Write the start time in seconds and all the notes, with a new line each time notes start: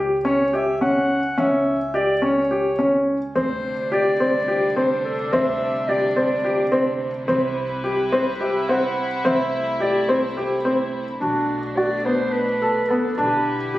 Already playing: C#2 G4
0.25 C#4 C#5
0.53 G4 E5
0.81 C#4 F#5
1.38 C#2 C#4 E5
1.94 G4 D5
2.22 C#4 C#5
2.51 G4
2.79 C#4
3.35 D2 C3 G3 C4 D4 C5
3.92 G4 D5
4.20 C4
4.48 G4
4.76 C4 C5
5.05 A4
5.33 D2 C4 E5
5.89 G4 D5
6.16 C4 D5
6.45 G4
6.72 C4
7.28 C2 C4 E4 B4
7.84 G4
8.12 C4 C5
8.40 G4 E5
8.69 C4 F#5
9.25 C2 A3 C4 E5
9.80 G4 D5
10.09 C4 C5
10.37 G4
10.65 C4
11.21 B1 B2 A3 D4 F#4
11.77 F#4 D5
12.05 B3 C5
12.32 B4
12.62 A4
12.88 B3 A4
13.17 B1 D3 D4 E4 G4 B4
13.74 G4